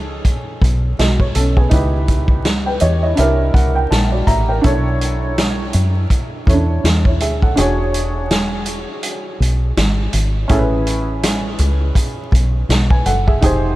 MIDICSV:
0, 0, Header, 1, 4, 480
1, 0, Start_track
1, 0, Tempo, 731707
1, 1128, Time_signature, 4, 2, 24, 8
1, 9025, End_track
2, 0, Start_track
2, 0, Title_t, "Upright piano"
2, 0, Program_c, 0, 0
2, 0, Note_on_c, 0, 61, 72
2, 0, Note_on_c, 0, 63, 74
2, 0, Note_on_c, 0, 68, 73
2, 0, Note_on_c, 0, 69, 87
2, 614, Note_off_c, 0, 61, 0
2, 619, Note_off_c, 0, 63, 0
2, 625, Note_off_c, 0, 68, 0
2, 628, Note_off_c, 0, 69, 0
2, 649, Note_on_c, 0, 75, 58
2, 653, Note_on_c, 0, 66, 51
2, 782, Note_off_c, 0, 75, 0
2, 784, Note_off_c, 0, 66, 0
2, 791, Note_on_c, 0, 73, 59
2, 884, Note_off_c, 0, 73, 0
2, 888, Note_on_c, 0, 69, 64
2, 892, Note_on_c, 0, 61, 54
2, 1021, Note_off_c, 0, 69, 0
2, 1024, Note_off_c, 0, 61, 0
2, 1030, Note_on_c, 0, 68, 64
2, 1031, Note_on_c, 0, 59, 59
2, 1112, Note_on_c, 0, 63, 81
2, 1121, Note_on_c, 0, 64, 66
2, 1132, Note_on_c, 0, 67, 73
2, 1141, Note_on_c, 0, 71, 82
2, 1257, Note_off_c, 0, 59, 0
2, 1257, Note_off_c, 0, 68, 0
2, 1590, Note_off_c, 0, 63, 0
2, 1595, Note_off_c, 0, 64, 0
2, 1600, Note_off_c, 0, 67, 0
2, 1605, Note_off_c, 0, 71, 0
2, 1746, Note_on_c, 0, 79, 61
2, 1751, Note_on_c, 0, 71, 58
2, 1842, Note_off_c, 0, 79, 0
2, 1843, Note_on_c, 0, 75, 69
2, 1844, Note_off_c, 0, 71, 0
2, 1844, Note_on_c, 0, 73, 73
2, 1847, Note_on_c, 0, 67, 63
2, 1975, Note_off_c, 0, 73, 0
2, 1976, Note_off_c, 0, 75, 0
2, 1981, Note_off_c, 0, 67, 0
2, 1985, Note_on_c, 0, 73, 60
2, 1986, Note_on_c, 0, 75, 66
2, 1989, Note_on_c, 0, 64, 48
2, 2068, Note_on_c, 0, 62, 65
2, 2069, Note_off_c, 0, 64, 0
2, 2079, Note_off_c, 0, 75, 0
2, 2079, Note_on_c, 0, 64, 72
2, 2083, Note_on_c, 0, 76, 70
2, 2088, Note_on_c, 0, 67, 65
2, 2099, Note_on_c, 0, 70, 85
2, 2214, Note_off_c, 0, 73, 0
2, 2308, Note_off_c, 0, 76, 0
2, 2321, Note_on_c, 0, 78, 74
2, 2455, Note_off_c, 0, 78, 0
2, 2462, Note_on_c, 0, 79, 79
2, 2558, Note_off_c, 0, 67, 0
2, 2558, Note_off_c, 0, 79, 0
2, 2563, Note_on_c, 0, 81, 67
2, 2564, Note_off_c, 0, 70, 0
2, 2702, Note_on_c, 0, 74, 59
2, 2705, Note_on_c, 0, 66, 47
2, 2788, Note_off_c, 0, 81, 0
2, 2799, Note_off_c, 0, 74, 0
2, 2800, Note_on_c, 0, 76, 74
2, 2801, Note_off_c, 0, 66, 0
2, 2801, Note_on_c, 0, 82, 76
2, 2804, Note_on_c, 0, 67, 57
2, 2937, Note_off_c, 0, 76, 0
2, 2939, Note_off_c, 0, 67, 0
2, 2942, Note_on_c, 0, 79, 59
2, 2946, Note_on_c, 0, 70, 56
2, 3016, Note_off_c, 0, 62, 0
2, 3024, Note_off_c, 0, 64, 0
2, 3026, Note_on_c, 0, 62, 78
2, 3027, Note_off_c, 0, 82, 0
2, 3035, Note_on_c, 0, 64, 70
2, 3044, Note_on_c, 0, 69, 75
2, 3055, Note_on_c, 0, 73, 90
2, 3173, Note_off_c, 0, 79, 0
2, 3175, Note_off_c, 0, 70, 0
2, 4213, Note_off_c, 0, 62, 0
2, 4217, Note_off_c, 0, 64, 0
2, 4222, Note_off_c, 0, 69, 0
2, 4227, Note_off_c, 0, 73, 0
2, 4241, Note_on_c, 0, 61, 44
2, 4246, Note_on_c, 0, 64, 54
2, 4251, Note_on_c, 0, 69, 52
2, 4257, Note_on_c, 0, 73, 64
2, 4285, Note_on_c, 0, 62, 63
2, 4294, Note_off_c, 0, 61, 0
2, 4487, Note_off_c, 0, 64, 0
2, 4489, Note_off_c, 0, 69, 0
2, 4492, Note_off_c, 0, 73, 0
2, 4630, Note_on_c, 0, 73, 56
2, 4634, Note_on_c, 0, 64, 46
2, 4724, Note_off_c, 0, 73, 0
2, 4726, Note_off_c, 0, 64, 0
2, 4731, Note_on_c, 0, 76, 75
2, 4735, Note_on_c, 0, 68, 56
2, 4863, Note_off_c, 0, 76, 0
2, 4865, Note_off_c, 0, 68, 0
2, 4871, Note_on_c, 0, 78, 59
2, 4875, Note_on_c, 0, 69, 55
2, 4946, Note_off_c, 0, 62, 0
2, 4956, Note_on_c, 0, 62, 81
2, 4964, Note_on_c, 0, 66, 72
2, 4975, Note_on_c, 0, 68, 75
2, 4984, Note_on_c, 0, 73, 83
2, 5097, Note_off_c, 0, 78, 0
2, 5099, Note_off_c, 0, 69, 0
2, 6856, Note_off_c, 0, 62, 0
2, 6860, Note_off_c, 0, 66, 0
2, 6865, Note_off_c, 0, 68, 0
2, 6870, Note_off_c, 0, 73, 0
2, 6874, Note_on_c, 0, 61, 82
2, 6882, Note_on_c, 0, 64, 75
2, 6891, Note_on_c, 0, 68, 72
2, 6901, Note_on_c, 0, 69, 75
2, 6944, Note_off_c, 0, 69, 0
2, 6945, Note_on_c, 0, 71, 83
2, 8303, Note_off_c, 0, 68, 0
2, 8330, Note_off_c, 0, 71, 0
2, 8466, Note_on_c, 0, 80, 58
2, 8472, Note_on_c, 0, 71, 47
2, 8562, Note_off_c, 0, 80, 0
2, 8565, Note_off_c, 0, 71, 0
2, 8567, Note_on_c, 0, 78, 74
2, 8571, Note_on_c, 0, 69, 61
2, 8701, Note_off_c, 0, 78, 0
2, 8703, Note_off_c, 0, 69, 0
2, 8707, Note_on_c, 0, 76, 69
2, 8710, Note_on_c, 0, 68, 60
2, 8775, Note_off_c, 0, 61, 0
2, 8779, Note_off_c, 0, 64, 0
2, 8796, Note_on_c, 0, 63, 81
2, 8805, Note_off_c, 0, 68, 0
2, 8806, Note_on_c, 0, 67, 74
2, 8815, Note_on_c, 0, 68, 77
2, 8826, Note_on_c, 0, 72, 84
2, 8935, Note_off_c, 0, 76, 0
2, 9025, Note_off_c, 0, 63, 0
2, 9025, Note_off_c, 0, 67, 0
2, 9025, Note_off_c, 0, 68, 0
2, 9025, Note_off_c, 0, 72, 0
2, 9025, End_track
3, 0, Start_track
3, 0, Title_t, "Fingered electric bass"
3, 0, Program_c, 1, 33
3, 0, Note_on_c, 1, 37, 92
3, 130, Note_off_c, 1, 37, 0
3, 404, Note_on_c, 1, 35, 91
3, 608, Note_off_c, 1, 35, 0
3, 649, Note_on_c, 1, 35, 89
3, 851, Note_off_c, 1, 35, 0
3, 889, Note_on_c, 1, 35, 93
3, 1091, Note_off_c, 1, 35, 0
3, 1126, Note_on_c, 1, 37, 97
3, 1821, Note_off_c, 1, 37, 0
3, 1848, Note_on_c, 1, 40, 93
3, 2050, Note_off_c, 1, 40, 0
3, 2089, Note_on_c, 1, 36, 98
3, 2291, Note_off_c, 1, 36, 0
3, 2322, Note_on_c, 1, 36, 91
3, 2527, Note_off_c, 1, 36, 0
3, 2566, Note_on_c, 1, 34, 88
3, 2769, Note_off_c, 1, 34, 0
3, 2802, Note_on_c, 1, 33, 101
3, 3007, Note_off_c, 1, 33, 0
3, 3048, Note_on_c, 1, 35, 102
3, 3741, Note_off_c, 1, 35, 0
3, 3767, Note_on_c, 1, 42, 89
3, 3970, Note_off_c, 1, 42, 0
3, 4245, Note_on_c, 1, 40, 89
3, 4449, Note_off_c, 1, 40, 0
3, 4487, Note_on_c, 1, 40, 89
3, 4727, Note_off_c, 1, 40, 0
3, 4727, Note_on_c, 1, 38, 87
3, 4930, Note_off_c, 1, 38, 0
3, 4968, Note_on_c, 1, 28, 98
3, 5802, Note_off_c, 1, 28, 0
3, 6168, Note_on_c, 1, 35, 84
3, 6370, Note_off_c, 1, 35, 0
3, 6407, Note_on_c, 1, 32, 88
3, 6610, Note_off_c, 1, 32, 0
3, 6647, Note_on_c, 1, 32, 85
3, 6850, Note_off_c, 1, 32, 0
3, 6888, Note_on_c, 1, 33, 99
3, 7581, Note_off_c, 1, 33, 0
3, 7604, Note_on_c, 1, 37, 92
3, 7808, Note_off_c, 1, 37, 0
3, 8084, Note_on_c, 1, 35, 85
3, 8288, Note_off_c, 1, 35, 0
3, 8325, Note_on_c, 1, 35, 83
3, 8528, Note_off_c, 1, 35, 0
3, 8566, Note_on_c, 1, 30, 89
3, 8769, Note_off_c, 1, 30, 0
3, 8809, Note_on_c, 1, 29, 100
3, 9025, Note_off_c, 1, 29, 0
3, 9025, End_track
4, 0, Start_track
4, 0, Title_t, "Drums"
4, 163, Note_on_c, 9, 36, 77
4, 163, Note_on_c, 9, 42, 66
4, 228, Note_off_c, 9, 36, 0
4, 228, Note_off_c, 9, 42, 0
4, 404, Note_on_c, 9, 36, 89
4, 418, Note_on_c, 9, 42, 71
4, 469, Note_off_c, 9, 36, 0
4, 484, Note_off_c, 9, 42, 0
4, 651, Note_on_c, 9, 42, 84
4, 653, Note_on_c, 9, 38, 108
4, 716, Note_off_c, 9, 42, 0
4, 719, Note_off_c, 9, 38, 0
4, 785, Note_on_c, 9, 36, 94
4, 851, Note_off_c, 9, 36, 0
4, 884, Note_on_c, 9, 42, 82
4, 950, Note_off_c, 9, 42, 0
4, 1029, Note_on_c, 9, 36, 82
4, 1094, Note_off_c, 9, 36, 0
4, 1121, Note_on_c, 9, 42, 87
4, 1126, Note_on_c, 9, 36, 124
4, 1187, Note_off_c, 9, 42, 0
4, 1192, Note_off_c, 9, 36, 0
4, 1365, Note_on_c, 9, 42, 63
4, 1367, Note_on_c, 9, 36, 78
4, 1430, Note_off_c, 9, 42, 0
4, 1433, Note_off_c, 9, 36, 0
4, 1495, Note_on_c, 9, 36, 98
4, 1561, Note_off_c, 9, 36, 0
4, 1605, Note_on_c, 9, 42, 86
4, 1609, Note_on_c, 9, 38, 107
4, 1671, Note_off_c, 9, 42, 0
4, 1674, Note_off_c, 9, 38, 0
4, 1835, Note_on_c, 9, 42, 67
4, 1901, Note_off_c, 9, 42, 0
4, 2079, Note_on_c, 9, 42, 77
4, 2145, Note_off_c, 9, 42, 0
4, 2323, Note_on_c, 9, 36, 99
4, 2336, Note_on_c, 9, 42, 70
4, 2388, Note_off_c, 9, 36, 0
4, 2402, Note_off_c, 9, 42, 0
4, 2570, Note_on_c, 9, 42, 84
4, 2573, Note_on_c, 9, 38, 121
4, 2636, Note_off_c, 9, 42, 0
4, 2638, Note_off_c, 9, 38, 0
4, 2802, Note_on_c, 9, 36, 88
4, 2803, Note_on_c, 9, 42, 84
4, 2868, Note_off_c, 9, 36, 0
4, 2869, Note_off_c, 9, 42, 0
4, 3043, Note_on_c, 9, 42, 86
4, 3047, Note_on_c, 9, 36, 122
4, 3109, Note_off_c, 9, 42, 0
4, 3113, Note_off_c, 9, 36, 0
4, 3288, Note_on_c, 9, 42, 71
4, 3353, Note_off_c, 9, 42, 0
4, 3528, Note_on_c, 9, 42, 99
4, 3531, Note_on_c, 9, 38, 109
4, 3594, Note_off_c, 9, 42, 0
4, 3597, Note_off_c, 9, 38, 0
4, 3759, Note_on_c, 9, 42, 67
4, 3824, Note_off_c, 9, 42, 0
4, 4003, Note_on_c, 9, 36, 77
4, 4004, Note_on_c, 9, 42, 70
4, 4068, Note_off_c, 9, 36, 0
4, 4070, Note_off_c, 9, 42, 0
4, 4245, Note_on_c, 9, 36, 91
4, 4259, Note_on_c, 9, 42, 72
4, 4310, Note_off_c, 9, 36, 0
4, 4325, Note_off_c, 9, 42, 0
4, 4492, Note_on_c, 9, 42, 93
4, 4494, Note_on_c, 9, 38, 111
4, 4558, Note_off_c, 9, 42, 0
4, 4560, Note_off_c, 9, 38, 0
4, 4626, Note_on_c, 9, 36, 95
4, 4692, Note_off_c, 9, 36, 0
4, 4726, Note_on_c, 9, 42, 76
4, 4791, Note_off_c, 9, 42, 0
4, 4870, Note_on_c, 9, 36, 82
4, 4936, Note_off_c, 9, 36, 0
4, 4966, Note_on_c, 9, 42, 98
4, 5031, Note_off_c, 9, 42, 0
4, 5209, Note_on_c, 9, 42, 67
4, 5274, Note_off_c, 9, 42, 0
4, 5448, Note_on_c, 9, 42, 94
4, 5452, Note_on_c, 9, 38, 121
4, 5514, Note_off_c, 9, 42, 0
4, 5517, Note_off_c, 9, 38, 0
4, 5678, Note_on_c, 9, 42, 65
4, 5744, Note_off_c, 9, 42, 0
4, 5922, Note_on_c, 9, 42, 73
4, 5987, Note_off_c, 9, 42, 0
4, 6180, Note_on_c, 9, 42, 70
4, 6246, Note_off_c, 9, 42, 0
4, 6410, Note_on_c, 9, 42, 94
4, 6412, Note_on_c, 9, 38, 119
4, 6476, Note_off_c, 9, 42, 0
4, 6478, Note_off_c, 9, 38, 0
4, 6644, Note_on_c, 9, 42, 88
4, 6709, Note_off_c, 9, 42, 0
4, 6883, Note_on_c, 9, 42, 90
4, 6887, Note_on_c, 9, 36, 105
4, 6948, Note_off_c, 9, 42, 0
4, 6953, Note_off_c, 9, 36, 0
4, 7128, Note_on_c, 9, 42, 70
4, 7194, Note_off_c, 9, 42, 0
4, 7368, Note_on_c, 9, 42, 106
4, 7372, Note_on_c, 9, 38, 114
4, 7434, Note_off_c, 9, 42, 0
4, 7437, Note_off_c, 9, 38, 0
4, 7599, Note_on_c, 9, 42, 67
4, 7665, Note_off_c, 9, 42, 0
4, 7842, Note_on_c, 9, 36, 85
4, 7843, Note_on_c, 9, 42, 72
4, 7907, Note_off_c, 9, 36, 0
4, 7909, Note_off_c, 9, 42, 0
4, 8084, Note_on_c, 9, 36, 98
4, 8099, Note_on_c, 9, 42, 79
4, 8149, Note_off_c, 9, 36, 0
4, 8165, Note_off_c, 9, 42, 0
4, 8331, Note_on_c, 9, 42, 94
4, 8333, Note_on_c, 9, 38, 109
4, 8396, Note_off_c, 9, 42, 0
4, 8398, Note_off_c, 9, 38, 0
4, 8465, Note_on_c, 9, 36, 106
4, 8531, Note_off_c, 9, 36, 0
4, 8565, Note_on_c, 9, 42, 78
4, 8630, Note_off_c, 9, 42, 0
4, 8710, Note_on_c, 9, 36, 82
4, 8775, Note_off_c, 9, 36, 0
4, 8805, Note_on_c, 9, 42, 99
4, 8808, Note_on_c, 9, 36, 120
4, 8870, Note_off_c, 9, 42, 0
4, 8874, Note_off_c, 9, 36, 0
4, 9025, End_track
0, 0, End_of_file